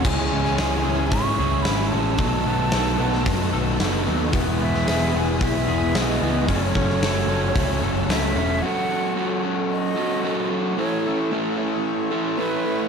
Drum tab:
CC |x---------------|----------------|----------------|----------------|
HH |----o---o---o---|o---o---o---o---|o---o---o---o---|o---o---o---o---|
SD |---oo-------o---|----o--o----o---|---oo-------o---|---oo-------o---|
BD |o-------o-------|o-------o-------|o-------o-------|o-o-----o-------|

CC |----------------|----------------|
HH |----------------|----------------|
SD |----------------|----------------|
BD |----------------|----------------|